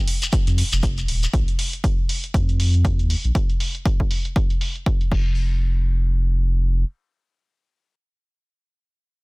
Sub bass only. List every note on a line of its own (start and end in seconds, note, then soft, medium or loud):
0.47 0.63 F2 medium
0.72 1.03 F1 loud
1.08 1.26 D#1 medium
1.34 1.43 A#1 loud
2.34 3.01 F2 loud
2.99 3.15 D#2 loud
3.24 3.32 A#1 medium
5.12 6.84 F1 medium